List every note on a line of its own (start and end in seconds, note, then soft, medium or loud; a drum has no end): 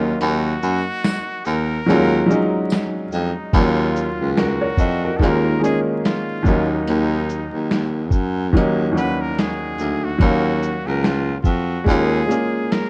0.00 0.15 D#2 medium
0.00 1.12 F#3 medium
0.00 1.13 A#3 medium
0.00 1.14 C#4 medium
0.00 1.15 D#4 medium
0.00 0.20 F4 medium
0.21 0.56 D#2 loud
0.21 1.48 F#4 loud
0.21 closed hi-hat medium
0.63 0.83 F#2 loud
0.63 shaker medium
1.04 finger snap medium
1.04 snare loud
1.04 closed hi-hat medium
1.04 tambourine medium
1.45 1.81 D#2 medium
1.45 2.71 A#4 loud
1.45 shaker soft
1.86 2.23 D#2 loud
1.86 2.21 F#3 medium
1.86 2.22 G#3 medium
1.86 2.23 C#4 medium
1.86 closed hi-hat medium
1.92 2.24 F4 loud
2.26 3.04 F#3 medium
2.26 3.04 G#3 medium
2.26 3.05 C#4 medium
2.31 3.06 D#4 loud
2.31 shaker medium
2.70 finger snap medium
2.70 snare loud
2.70 closed hi-hat medium
2.70 tambourine medium
3.12 3.33 F2 medium
3.12 3.57 D#4 medium
3.12 shaker soft
3.53 4.10 D#2 loud
3.53 4.56 D#2 medium
3.53 4.57 F#3 medium
3.53 4.57 A#3 medium
3.53 4.33 F4 medium
3.53 kick loud
3.53 closed hi-hat medium
3.53 crash medium
3.58 4.58 C#4 medium
3.58 4.40 F4 medium
3.96 shaker medium
4.20 4.71 C#2 medium
4.33 4.40 F4 medium
4.37 4.60 F#4 medium
4.37 5.18 F#4 loud
4.37 4.60 A#4 medium
4.37 finger snap medium
4.37 snare loud
4.37 closed hi-hat medium
4.61 4.78 A#4 medium
4.61 4.78 C#5 medium
4.77 5.14 F2 medium
4.77 5.01 D#5 medium
4.77 kick medium
4.77 shaker soft
5.05 5.43 F#4 medium
5.05 5.43 A#4 medium
5.17 5.56 D#2 loud
5.17 5.54 D#3 medium
5.17 5.55 G#3 medium
5.17 5.24 A4 medium
5.17 kick medium
5.21 5.55 A#3 medium
5.21 5.56 C#4 medium
5.21 5.57 F4 medium
5.21 5.63 A#4 loud
5.21 closed hi-hat medium
5.59 6.37 D#3 medium
5.59 6.37 G#3 medium
5.59 6.38 A#3 medium
5.63 6.39 C#4 medium
5.63 6.40 D#4 medium
5.63 5.80 G#4 loud
5.63 closed hi-hat medium
5.63 shaker medium
6.05 6.66 F4 medium
6.05 finger snap medium
6.05 snare loud
6.05 closed hi-hat medium
6.42 7.78 D#2 medium
6.42 6.81 D#2 medium
6.42 7.79 F#3 medium
6.42 7.80 A#3 medium
6.42 kick loud
6.42 shaker soft
6.47 7.80 C#4 medium
6.47 7.81 D#4 medium
6.70 7.91 D#4 medium
6.87 7.44 D#2 loud
6.87 closed hi-hat medium
7.30 shaker medium
7.53 8.13 D#2 medium
7.71 finger snap medium
7.71 snare loud
7.71 closed hi-hat medium
8.11 8.55 F#2 medium
8.11 kick medium
8.11 shaker soft
8.52 8.87 D#2 medium
8.52 8.89 D#2 loud
8.52 8.88 F#3 medium
8.52 8.89 A#3 medium
8.52 kick medium
8.57 8.90 C#4 medium
8.57 8.90 D#4 loud
8.57 closed hi-hat medium
8.91 9.69 D#2 medium
8.91 9.70 F#3 medium
8.91 9.71 A#3 medium
8.96 9.72 C#4 medium
8.96 9.72 F#4 medium
8.96 9.23 B4 loud
8.96 closed hi-hat medium
8.96 shaker medium
9.21 9.41 A#4 medium
9.39 10.06 G#4 loud
9.39 finger snap medium
9.39 snare loud
9.39 closed hi-hat medium
9.79 10.15 D2 medium
9.79 shaker soft
10.04 10.89 F#4 loud
10.18 10.76 D#2 loud
10.18 11.22 F#3 medium
10.18 11.22 A#3 medium
10.18 11.23 C#4 medium
10.18 kick loud
10.18 closed hi-hat medium
10.24 11.24 F5 medium
10.63 shaker medium
10.86 11.37 C#2 medium
10.86 11.08 A#4 medium
11.04 11.40 F4 medium
11.04 finger snap medium
11.04 snare loud
11.04 closed hi-hat medium
11.41 11.81 F2 medium
11.41 11.49 F4 medium
11.41 kick medium
11.41 shaker soft
11.48 11.88 F#4 medium
11.84 12.23 D#2 loud
11.84 12.20 G#3 medium
11.84 12.21 A#3 medium
11.84 12.22 C#4 medium
11.84 kick medium
11.89 12.23 F4 medium
11.89 12.74 G#4 loud
11.89 closed hi-hat medium
12.27 12.90 G#3 medium
12.27 12.90 A#3 medium
12.27 12.90 C#4 medium
12.31 12.90 G#4 medium
12.31 closed hi-hat medium
12.31 shaker medium
12.72 12.90 A#4 medium
12.72 finger snap medium
12.72 snare loud
12.72 closed hi-hat medium